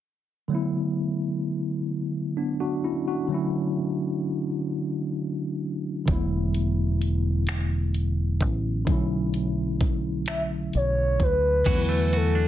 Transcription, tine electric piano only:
0.48 3.24 D3 medium
0.48 3.25 F#3 medium
0.48 3.26 A3 soft
0.53 2.34 B3 soft
0.53 2.35 E4 medium
2.37 2.59 B3 soft
2.37 2.59 D4 soft
2.60 2.82 D4 soft
2.60 2.82 F#4 medium
2.84 3.06 C#4 soft
2.84 3.06 E4 soft
3.08 3.51 D4 soft
3.08 3.51 F#4 soft
3.28 6.03 D3 medium
3.28 6.04 F#3 medium
3.28 6.05 A3 soft
3.32 6.06 C#4 medium
3.32 6.07 E4 medium
6.06 8.82 D3 medium
6.06 8.83 F#3 medium
6.06 8.84 A3 medium
6.11 8.85 B3 medium
6.11 8.85 E4 medium
8.85 11.61 D3 medium
8.85 11.62 F#3 medium
8.85 11.63 A3 soft
8.90 11.64 C#4 medium
8.90 11.65 E4 medium
11.64 12.48 D3 medium
11.64 12.48 F#3 soft
11.64 12.48 A3 medium
11.69 12.48 B3 soft
11.69 11.75 D4 soft
11.77 12.48 E4 medium

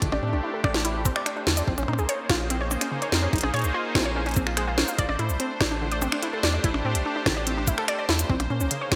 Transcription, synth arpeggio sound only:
0.02 0.08 D3 medium
0.12 0.18 D5 medium
0.23 0.29 C4 medium
0.33 0.39 D4 medium
0.43 0.47 E4 medium
0.54 0.60 A4 medium
0.64 0.73 D5 loud
0.85 0.94 E4 loud
1.05 1.11 C4 loud
1.16 1.22 D5 medium
1.26 1.30 D4 medium
1.36 1.42 D4 medium
1.47 1.53 D3 medium
1.57 1.63 D5 medium
1.68 1.73 C4 medium
1.78 1.84 C#4 medium
1.88 1.92 D#4 medium
1.99 2.04 G#4 medium
2.09 2.18 C#5 loud
2.30 2.38 F4 loud
2.50 2.56 C4 loud
2.61 2.67 C#5 medium
2.71 2.75 C#4 medium
2.81 2.87 C#4 medium
2.92 2.97 C#3 medium
3.02 3.08 C#5 medium
3.12 3.18 C4 medium
3.23 3.29 C#4 medium
3.33 3.37 D#4 medium
3.43 3.49 G#4 medium
3.54 3.63 C#5 loud
3.74 3.83 F4 loud
3.95 4.01 C4 loud
4.05 4.11 C#5 medium
4.16 4.19 C#4 medium
4.26 4.32 C#4 medium
4.37 4.42 C4 medium
4.47 4.53 F4 medium
4.57 4.66 G#3 loud
4.68 4.73 F4 medium
4.78 4.84 C#4 medium
4.88 4.97 F4 medium
4.99 5.07 D5 loud
5.09 5.15 D5 medium
5.19 5.28 E4 loud
5.40 5.46 C4 loud
5.61 5.64 D4 medium
5.71 5.77 D4 medium
5.81 5.87 D3 medium
5.92 5.98 D5 medium
6.02 6.08 C4 medium
6.12 6.18 D4 medium
6.23 6.26 E4 medium
6.33 6.39 A4 medium
6.43 6.52 D5 loud
6.54 6.60 D5 medium
6.64 6.73 E4 loud
6.85 6.91 C4 loud
7.06 7.09 D4 medium
7.16 7.22 D4 medium
7.26 7.32 D3 medium
7.37 7.42 D5 medium
7.47 7.53 C4 medium
7.57 7.63 D4 medium
7.68 7.71 E4 medium
7.78 7.84 A4 medium
7.88 7.97 D5 loud
7.99 8.04 D5 medium
8.09 8.18 E4 loud
8.30 8.35 C4 loud
8.50 8.54 C#4 medium
8.61 8.66 C#4 medium
8.71 8.77 C#3 medium
8.81 8.87 C#5 medium
8.92 8.96 C4 medium

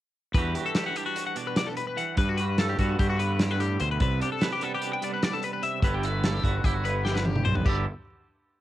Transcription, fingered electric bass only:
0.34 0.54 E2 medium
2.18 2.75 G2 medium
2.78 2.98 G2 medium
2.99 3.76 G2 medium
3.81 4.00 D2 medium
4.01 4.20 C2 medium
5.82 6.40 G1 medium
6.44 6.63 G1 medium
6.64 7.42 G1 medium
7.46 7.65 B1 medium
7.66 7.85 G1 medium

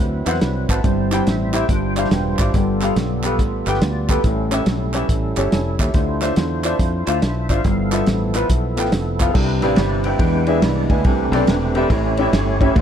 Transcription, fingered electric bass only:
0.00 0.22 D2 medium
0.26 0.39 E2 medium
0.42 0.65 C2 loud
0.69 0.81 G#1 medium
0.84 1.20 G1 medium
1.27 1.63 A1 medium
1.69 2.05 G1 medium
2.11 2.35 E1 loud
2.39 2.52 G#1 medium
2.54 2.90 G1 medium
2.96 3.39 B1 medium
3.39 3.62 A1 medium
3.67 3.79 G1 medium
3.81 4.18 D2 medium
4.24 4.60 A1 loud
4.66 5.03 B1 medium
5.09 5.33 A1 medium
5.37 5.50 G1 medium
5.52 5.76 F1 medium
5.79 5.92 D#2 medium
5.94 6.30 D2 medium
6.37 6.73 E2 medium
6.79 7.03 F2 medium
7.07 7.20 D2 medium
7.23 7.51 B1 medium
7.49 7.62 G#1 medium
7.65 8.01 G1 loud
8.07 8.44 A1 medium
8.49 8.78 B1 medium
8.78 8.90 A1 medium
8.93 9.29 F1 medium
9.35 9.62 C2 loud
9.62 9.75 A1 loud
9.77 10.14 G1 medium
10.19 10.64 E2 loud
10.62 10.86 C2 loud
10.90 11.03 D2 medium
11.05 11.29 C2 medium
11.32 11.45 B1 loud
11.47 11.84 E1 medium
11.90 12.27 A1 loud
12.33 12.69 G1 loud
12.75 12.81 D2 loud

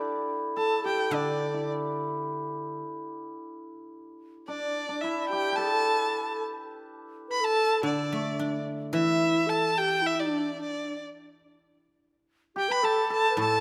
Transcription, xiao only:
0.56 0.86 A4 medium
0.84 1.14 G4 medium
1.13 1.69 D4 medium
4.48 4.87 D4 medium
4.89 5.04 D4 medium
5.03 5.32 E4 medium
5.30 5.59 G4 medium
5.57 6.43 A4 medium
7.29 7.42 B4 medium
7.41 7.85 A4 loud
7.83 8.66 D4 medium
8.92 9.48 E4 medium
9.47 9.74 A4 medium
9.74 9.80 A4 medium
9.79 10.03 G4 medium
10.02 10.17 E4 medium
10.16 10.57 D4 medium
10.58 10.99 D4 medium
12.56 12.70 G4 medium
12.69 12.84 B4 medium
12.82 13.08 A4 medium
13.09 13.29 A4 medium
13.30 13.39 B4 medium
13.37 13.60 A4 medium

